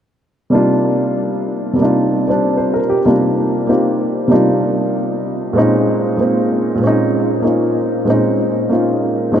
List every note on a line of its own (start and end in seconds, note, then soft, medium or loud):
0.50 1.72 C3 soft
0.50 1.74 G3 soft
0.50 1.76 A#3 soft
0.50 1.79 D4 soft
0.54 1.79 D#4 soft
0.54 1.80 F4 medium
1.73 3.02 C3 soft
1.73 2.26 G3 soft
1.78 3.04 A#3 soft
1.78 2.29 D4 soft
1.82 3.05 D#4 soft
1.82 3.05 F4 soft
2.28 3.03 G3 soft
2.28 3.04 C4 soft
2.28 3.04 D4 soft
2.57 2.79 C5 soft
2.74 2.97 A#4 soft
2.90 3.11 G4 soft
3.05 4.26 C3 soft
3.05 4.27 G3 soft
3.05 3.66 A#3 soft
3.05 4.29 D4 soft
3.05 3.67 D#4 soft
3.05 3.68 F4 soft
3.67 4.28 A#3 soft
3.67 4.30 C4 soft
3.67 4.30 D#4 soft
3.67 4.31 F4 soft
3.67 4.31 G4 soft
4.28 5.54 C3 soft
4.28 5.55 G3 soft
4.28 5.55 A#3 soft
4.28 5.56 D4 soft
4.28 5.56 D#4 soft
4.33 5.57 F4 medium
5.53 6.74 A#2 medium
5.53 6.16 G#3 soft
5.53 6.19 C4 soft
5.53 6.82 C#4 soft
5.58 6.82 D#4 medium
6.17 6.77 G#3 soft
6.17 6.81 A#3 soft
6.17 6.80 C4 soft
6.75 8.03 A#2 soft
6.75 8.04 G#3 soft
6.82 8.06 C4 soft
6.82 7.42 C#4 soft
6.87 7.42 D#4 medium
7.42 8.06 A#3 soft
7.42 8.07 C#4 soft
7.42 8.07 D#4 soft
7.42 8.07 F4 soft
8.05 9.30 A#2 soft
8.05 9.31 G#3 soft
8.05 9.32 C4 soft
8.05 8.69 C#4 soft
8.10 8.70 D#4 medium
8.69 9.32 A#3 soft
8.69 9.32 C#4 soft
8.69 9.32 D#4 soft
8.69 9.34 F4 soft
9.32 9.40 A#2 soft
9.32 9.40 G#3 soft
9.32 9.40 C4 soft
9.32 9.40 C#4 soft
9.32 9.40 D#4 medium